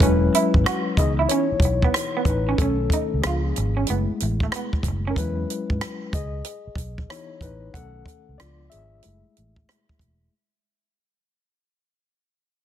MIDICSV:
0, 0, Header, 1, 7, 480
1, 0, Start_track
1, 0, Time_signature, 4, 2, 24, 8
1, 0, Key_signature, 4, "major"
1, 0, Tempo, 645161
1, 9405, End_track
2, 0, Start_track
2, 0, Title_t, "Reed electric piano"
2, 0, Program_c, 0, 4
2, 0, Control_c, 0, 64, 127
2, 2, Note_on_c, 0, 71, 82
2, 3, Note_on_c, 0, 54, 50
2, 6, Note_on_c, 0, 56, 49
2, 8, Control_c, 0, 64, 0
2, 10, Note_on_c, 0, 61, 56
2, 14, Note_on_c, 0, 64, 65
2, 145, Control_c, 0, 64, 127
2, 692, Note_off_c, 0, 54, 0
2, 693, Note_off_c, 0, 56, 0
2, 695, Note_off_c, 0, 61, 0
2, 697, Note_off_c, 0, 64, 0
2, 726, Note_on_c, 0, 52, 50
2, 726, Note_on_c, 0, 75, 87
2, 730, Control_c, 0, 64, 0
2, 733, Note_on_c, 0, 59, 46
2, 737, Note_on_c, 0, 68, 66
2, 738, Note_on_c, 0, 63, 53
2, 742, Note_off_c, 0, 71, 0
2, 832, Note_off_c, 0, 75, 0
2, 841, Note_off_c, 0, 68, 0
2, 882, Control_c, 0, 64, 127
2, 956, Note_on_c, 0, 73, 79
2, 972, Note_on_c, 0, 64, 63
2, 1656, Note_off_c, 0, 64, 0
2, 1680, Note_on_c, 0, 71, 71
2, 1685, Note_off_c, 0, 63, 0
2, 1693, Note_on_c, 0, 63, 60
2, 1699, Note_off_c, 0, 73, 0
2, 1893, Note_off_c, 0, 52, 0
2, 1896, Note_off_c, 0, 59, 0
2, 1910, Note_off_c, 0, 63, 0
2, 1920, Note_on_c, 0, 69, 77
2, 1925, Note_on_c, 0, 51, 47
2, 1927, Note_off_c, 0, 71, 0
2, 1928, Control_c, 0, 64, 0
2, 1931, Note_on_c, 0, 57, 47
2, 1936, Note_on_c, 0, 61, 65
2, 2048, Control_c, 0, 64, 127
2, 2378, Note_off_c, 0, 51, 0
2, 2379, Note_off_c, 0, 61, 0
2, 2381, Note_off_c, 0, 57, 0
2, 2397, Note_on_c, 0, 68, 60
2, 2403, Note_on_c, 0, 53, 48
2, 2407, Note_on_c, 0, 59, 50
2, 2408, Control_c, 0, 64, 0
2, 2409, Note_on_c, 0, 62, 50
2, 2414, Note_off_c, 0, 69, 0
2, 2535, Control_c, 0, 64, 127
2, 2742, Note_off_c, 0, 53, 0
2, 2746, Note_off_c, 0, 62, 0
2, 2886, Note_on_c, 0, 56, 47
2, 2888, Note_on_c, 0, 57, 43
2, 2890, Control_c, 0, 64, 0
2, 2893, Note_on_c, 0, 64, 46
2, 3019, Control_c, 0, 64, 127
2, 3568, Note_off_c, 0, 68, 0
2, 3576, Note_off_c, 0, 59, 0
2, 3798, Note_on_c, 0, 70, 58
2, 3813, Note_off_c, 0, 56, 0
2, 3814, Note_off_c, 0, 57, 0
2, 3816, Note_off_c, 0, 64, 0
2, 3839, Note_off_c, 0, 70, 0
2, 3848, Control_c, 0, 64, 0
2, 3850, Note_on_c, 0, 54, 49
2, 3853, Note_on_c, 0, 71, 75
2, 3857, Note_on_c, 0, 56, 46
2, 3860, Note_on_c, 0, 61, 54
2, 3861, Note_on_c, 0, 64, 56
2, 3993, Control_c, 0, 64, 127
2, 4535, Note_off_c, 0, 54, 0
2, 4539, Note_off_c, 0, 56, 0
2, 4540, Note_off_c, 0, 61, 0
2, 4540, Note_off_c, 0, 64, 0
2, 4568, Note_on_c, 0, 75, 76
2, 4570, Control_c, 0, 64, 0
2, 4579, Note_on_c, 0, 68, 59
2, 4588, Note_off_c, 0, 71, 0
2, 4694, Control_c, 0, 64, 127
2, 5259, Note_off_c, 0, 68, 0
2, 5281, Note_on_c, 0, 73, 74
2, 5288, Note_on_c, 0, 52, 47
2, 5288, Note_on_c, 0, 59, 40
2, 5294, Note_on_c, 0, 63, 50
2, 5298, Note_on_c, 0, 64, 58
2, 5305, Note_off_c, 0, 75, 0
2, 5512, Note_off_c, 0, 64, 0
2, 5522, Note_on_c, 0, 71, 71
2, 5527, Note_off_c, 0, 73, 0
2, 5529, Note_off_c, 0, 63, 0
2, 5538, Note_on_c, 0, 63, 57
2, 5740, Note_off_c, 0, 52, 0
2, 5740, Note_off_c, 0, 59, 0
2, 5753, Note_off_c, 0, 63, 0
2, 5756, Note_on_c, 0, 78, 89
2, 5766, Note_on_c, 0, 51, 45
2, 5768, Note_off_c, 0, 71, 0
2, 5768, Control_c, 0, 64, 0
2, 5770, Note_on_c, 0, 57, 43
2, 5772, Note_on_c, 0, 61, 49
2, 5773, Note_on_c, 0, 69, 74
2, 5903, Control_c, 0, 64, 127
2, 6208, Note_off_c, 0, 78, 0
2, 6217, Note_off_c, 0, 69, 0
2, 6219, Note_off_c, 0, 51, 0
2, 6221, Note_off_c, 0, 57, 0
2, 6222, Note_off_c, 0, 61, 0
2, 6234, Note_on_c, 0, 74, 75
2, 6238, Note_on_c, 0, 53, 42
2, 6245, Note_on_c, 0, 59, 44
2, 6250, Control_c, 0, 64, 0
2, 6251, Note_on_c, 0, 62, 44
2, 6252, Note_on_c, 0, 65, 54
2, 6360, Control_c, 0, 64, 127
2, 6469, Note_off_c, 0, 65, 0
2, 6471, Note_on_c, 0, 76, 74
2, 6484, Note_off_c, 0, 74, 0
2, 6487, Note_on_c, 0, 68, 54
2, 6695, Note_off_c, 0, 53, 0
2, 6698, Note_off_c, 0, 59, 0
2, 6701, Note_off_c, 0, 62, 0
2, 6719, Note_on_c, 0, 56, 40
2, 6721, Note_on_c, 0, 57, 40
2, 6727, Note_on_c, 0, 64, 45
2, 6728, Control_c, 0, 64, 0
2, 6843, Control_c, 0, 64, 127
2, 7060, Note_off_c, 0, 56, 0
2, 7061, Note_off_c, 0, 57, 0
2, 7064, Note_off_c, 0, 64, 0
2, 7166, Note_off_c, 0, 76, 0
2, 7173, Note_off_c, 0, 68, 0
2, 7688, Control_c, 0, 64, 0
2, 9405, End_track
3, 0, Start_track
3, 0, Title_t, "Clean electric guitar"
3, 0, Program_c, 1, 27
3, 21, Note_on_c, 1, 61, 68
3, 123, Note_off_c, 1, 61, 0
3, 260, Note_on_c, 1, 64, 70
3, 362, Note_off_c, 1, 64, 0
3, 492, Note_on_c, 1, 66, 74
3, 598, Note_off_c, 1, 66, 0
3, 886, Note_on_c, 1, 64, 59
3, 947, Note_off_c, 1, 64, 0
3, 978, Note_on_c, 1, 61, 79
3, 1081, Note_off_c, 1, 61, 0
3, 1372, Note_on_c, 1, 59, 66
3, 1431, Note_off_c, 1, 59, 0
3, 1612, Note_on_c, 1, 59, 69
3, 1671, Note_off_c, 1, 59, 0
3, 1850, Note_on_c, 1, 61, 67
3, 1910, Note_off_c, 1, 61, 0
3, 1947, Note_on_c, 1, 61, 79
3, 2047, Note_off_c, 1, 61, 0
3, 2184, Note_on_c, 1, 63, 61
3, 2285, Note_off_c, 1, 63, 0
3, 2431, Note_on_c, 1, 65, 71
3, 2530, Note_off_c, 1, 65, 0
3, 2803, Note_on_c, 1, 61, 59
3, 2865, Note_off_c, 1, 61, 0
3, 2902, Note_on_c, 1, 59, 78
3, 3004, Note_off_c, 1, 59, 0
3, 3299, Note_on_c, 1, 57, 72
3, 3355, Note_off_c, 1, 57, 0
3, 3392, Note_on_c, 1, 59, 62
3, 3490, Note_off_c, 1, 59, 0
3, 3775, Note_on_c, 1, 61, 71
3, 3833, Note_off_c, 1, 61, 0
3, 9405, End_track
4, 0, Start_track
4, 0, Title_t, "Fingered electric bass"
4, 0, Program_c, 2, 33
4, 11, Note_on_c, 2, 28, 98
4, 208, Note_off_c, 2, 28, 0
4, 411, Note_on_c, 2, 32, 72
4, 478, Note_off_c, 2, 32, 0
4, 730, Note_on_c, 2, 37, 83
4, 927, Note_off_c, 2, 37, 0
4, 1196, Note_on_c, 2, 35, 67
4, 1399, Note_off_c, 2, 35, 0
4, 1685, Note_on_c, 2, 33, 70
4, 1884, Note_off_c, 2, 33, 0
4, 1931, Note_on_c, 2, 35, 83
4, 2128, Note_off_c, 2, 35, 0
4, 2333, Note_on_c, 2, 37, 72
4, 2399, Note_off_c, 2, 37, 0
4, 2660, Note_on_c, 2, 32, 75
4, 2853, Note_off_c, 2, 32, 0
4, 2900, Note_on_c, 2, 30, 77
4, 3016, Note_off_c, 2, 30, 0
4, 3139, Note_on_c, 2, 33, 75
4, 3332, Note_off_c, 2, 33, 0
4, 3603, Note_on_c, 2, 30, 67
4, 3803, Note_off_c, 2, 30, 0
4, 3847, Note_on_c, 2, 40, 93
4, 4045, Note_off_c, 2, 40, 0
4, 4247, Note_on_c, 2, 44, 74
4, 4316, Note_off_c, 2, 44, 0
4, 4570, Note_on_c, 2, 37, 76
4, 4767, Note_off_c, 2, 37, 0
4, 5033, Note_on_c, 2, 35, 80
4, 5237, Note_off_c, 2, 35, 0
4, 5520, Note_on_c, 2, 33, 63
4, 5721, Note_off_c, 2, 33, 0
4, 5764, Note_on_c, 2, 35, 88
4, 5963, Note_off_c, 2, 35, 0
4, 6165, Note_on_c, 2, 37, 73
4, 6235, Note_off_c, 2, 37, 0
4, 6257, Note_on_c, 2, 37, 73
4, 6451, Note_off_c, 2, 37, 0
4, 6500, Note_on_c, 2, 32, 65
4, 6693, Note_off_c, 2, 32, 0
4, 6739, Note_on_c, 2, 30, 84
4, 6856, Note_off_c, 2, 30, 0
4, 6980, Note_on_c, 2, 33, 68
4, 7173, Note_off_c, 2, 33, 0
4, 7445, Note_on_c, 2, 28, 57
4, 7644, Note_off_c, 2, 28, 0
4, 9405, End_track
5, 0, Start_track
5, 0, Title_t, "Muted clean electric guitar strokes"
5, 739, Note_on_c, 9, 29, 42
5, 813, Note_off_c, 9, 29, 0
5, 1228, Note_on_c, 9, 29, 40
5, 1303, Note_off_c, 9, 29, 0
5, 1709, Note_on_c, 9, 29, 34
5, 1783, Note_off_c, 9, 29, 0
5, 2662, Note_on_c, 9, 29, 36
5, 2736, Note_off_c, 9, 29, 0
5, 3149, Note_on_c, 9, 29, 37
5, 3223, Note_off_c, 9, 29, 0
5, 3633, Note_on_c, 9, 29, 31
5, 3708, Note_off_c, 9, 29, 0
5, 9405, End_track
6, 0, Start_track
6, 0, Title_t, "Muted fingered electric bass strokes"
6, 1129, Note_on_c, 9, 29, 39
6, 1204, Note_off_c, 9, 29, 0
6, 4963, Note_on_c, 9, 29, 37
6, 5038, Note_off_c, 9, 29, 0
6, 9405, End_track
7, 0, Start_track
7, 0, Title_t, "Drums"
7, 3, Note_on_c, 9, 36, 98
7, 11, Note_on_c, 9, 42, 76
7, 77, Note_off_c, 9, 36, 0
7, 86, Note_off_c, 9, 42, 0
7, 257, Note_on_c, 9, 42, 64
7, 331, Note_off_c, 9, 42, 0
7, 403, Note_on_c, 9, 36, 74
7, 478, Note_off_c, 9, 36, 0
7, 491, Note_on_c, 9, 42, 63
7, 493, Note_on_c, 9, 37, 113
7, 566, Note_off_c, 9, 42, 0
7, 568, Note_off_c, 9, 37, 0
7, 723, Note_on_c, 9, 36, 93
7, 729, Note_on_c, 9, 42, 63
7, 798, Note_off_c, 9, 36, 0
7, 803, Note_off_c, 9, 42, 0
7, 961, Note_on_c, 9, 42, 80
7, 1035, Note_off_c, 9, 42, 0
7, 1188, Note_on_c, 9, 36, 87
7, 1205, Note_on_c, 9, 42, 58
7, 1263, Note_off_c, 9, 36, 0
7, 1280, Note_off_c, 9, 42, 0
7, 1357, Note_on_c, 9, 36, 76
7, 1432, Note_off_c, 9, 36, 0
7, 1445, Note_on_c, 9, 37, 104
7, 1457, Note_on_c, 9, 42, 80
7, 1519, Note_off_c, 9, 37, 0
7, 1531, Note_off_c, 9, 42, 0
7, 1676, Note_on_c, 9, 36, 79
7, 1680, Note_on_c, 9, 42, 51
7, 1750, Note_off_c, 9, 36, 0
7, 1755, Note_off_c, 9, 42, 0
7, 1922, Note_on_c, 9, 36, 94
7, 1927, Note_on_c, 9, 42, 68
7, 1996, Note_off_c, 9, 36, 0
7, 2002, Note_off_c, 9, 42, 0
7, 2157, Note_on_c, 9, 36, 75
7, 2172, Note_on_c, 9, 42, 67
7, 2231, Note_off_c, 9, 36, 0
7, 2246, Note_off_c, 9, 42, 0
7, 2405, Note_on_c, 9, 42, 69
7, 2407, Note_on_c, 9, 37, 106
7, 2479, Note_off_c, 9, 42, 0
7, 2482, Note_off_c, 9, 37, 0
7, 2649, Note_on_c, 9, 42, 54
7, 2723, Note_off_c, 9, 42, 0
7, 2877, Note_on_c, 9, 42, 80
7, 2951, Note_off_c, 9, 42, 0
7, 3127, Note_on_c, 9, 42, 57
7, 3201, Note_off_c, 9, 42, 0
7, 3276, Note_on_c, 9, 36, 75
7, 3350, Note_off_c, 9, 36, 0
7, 3363, Note_on_c, 9, 37, 100
7, 3375, Note_on_c, 9, 42, 70
7, 3438, Note_off_c, 9, 37, 0
7, 3450, Note_off_c, 9, 42, 0
7, 3519, Note_on_c, 9, 36, 81
7, 3593, Note_off_c, 9, 36, 0
7, 3594, Note_on_c, 9, 36, 86
7, 3601, Note_on_c, 9, 42, 47
7, 3669, Note_off_c, 9, 36, 0
7, 3675, Note_off_c, 9, 42, 0
7, 3841, Note_on_c, 9, 36, 96
7, 3848, Note_on_c, 9, 42, 66
7, 3916, Note_off_c, 9, 36, 0
7, 3922, Note_off_c, 9, 42, 0
7, 4092, Note_on_c, 9, 42, 62
7, 4166, Note_off_c, 9, 42, 0
7, 4240, Note_on_c, 9, 36, 72
7, 4315, Note_off_c, 9, 36, 0
7, 4323, Note_on_c, 9, 42, 61
7, 4325, Note_on_c, 9, 37, 101
7, 4397, Note_off_c, 9, 42, 0
7, 4400, Note_off_c, 9, 37, 0
7, 4561, Note_on_c, 9, 36, 95
7, 4566, Note_on_c, 9, 42, 60
7, 4635, Note_off_c, 9, 36, 0
7, 4641, Note_off_c, 9, 42, 0
7, 4795, Note_on_c, 9, 42, 73
7, 4869, Note_off_c, 9, 42, 0
7, 5026, Note_on_c, 9, 36, 79
7, 5044, Note_on_c, 9, 42, 56
7, 5100, Note_off_c, 9, 36, 0
7, 5118, Note_off_c, 9, 42, 0
7, 5194, Note_on_c, 9, 36, 74
7, 5269, Note_off_c, 9, 36, 0
7, 5284, Note_on_c, 9, 37, 96
7, 5296, Note_on_c, 9, 42, 73
7, 5359, Note_off_c, 9, 37, 0
7, 5371, Note_off_c, 9, 42, 0
7, 5511, Note_on_c, 9, 36, 76
7, 5520, Note_on_c, 9, 42, 49
7, 5586, Note_off_c, 9, 36, 0
7, 5595, Note_off_c, 9, 42, 0
7, 5758, Note_on_c, 9, 36, 79
7, 5766, Note_on_c, 9, 42, 67
7, 5833, Note_off_c, 9, 36, 0
7, 5840, Note_off_c, 9, 42, 0
7, 5994, Note_on_c, 9, 36, 77
7, 6010, Note_on_c, 9, 42, 56
7, 6068, Note_off_c, 9, 36, 0
7, 6084, Note_off_c, 9, 42, 0
7, 6246, Note_on_c, 9, 42, 60
7, 6248, Note_on_c, 9, 37, 97
7, 6321, Note_off_c, 9, 42, 0
7, 6323, Note_off_c, 9, 37, 0
7, 6483, Note_on_c, 9, 42, 51
7, 6557, Note_off_c, 9, 42, 0
7, 6715, Note_on_c, 9, 42, 73
7, 6789, Note_off_c, 9, 42, 0
7, 6968, Note_on_c, 9, 42, 55
7, 7043, Note_off_c, 9, 42, 0
7, 7116, Note_on_c, 9, 36, 73
7, 7190, Note_off_c, 9, 36, 0
7, 7209, Note_on_c, 9, 37, 87
7, 7221, Note_on_c, 9, 42, 64
7, 7283, Note_off_c, 9, 37, 0
7, 7295, Note_off_c, 9, 42, 0
7, 7361, Note_on_c, 9, 36, 72
7, 7435, Note_off_c, 9, 36, 0
7, 7436, Note_on_c, 9, 36, 77
7, 7445, Note_on_c, 9, 42, 49
7, 7510, Note_off_c, 9, 36, 0
7, 7520, Note_off_c, 9, 42, 0
7, 9405, End_track
0, 0, End_of_file